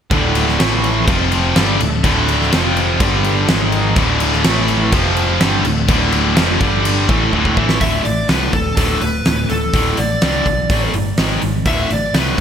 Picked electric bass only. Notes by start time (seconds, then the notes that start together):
0.11 D1
0.60 A1
1.08 F1
1.57 G1
1.81 D1
2.04 D1
2.53 F1
3.00 G1
3.49 G#1
3.96 D1
4.45 A1
4.92 F1
5.41 G1
5.65 D1
5.89 D1
6.37 F1
6.61 G1
7.09 A1
7.33 D1
7.57 A1
7.81 D1
8.05 A1
8.29 C2
8.53 D1
8.78 D1
9.02 D1
9.26 D1
9.50 D1
9.74 D1
9.98 A1
10.22 C2
10.46 B1
10.70 A1
10.94 G1
11.18 G#1
11.43 G#1
11.66 D1
11.91 A1
12.14 C2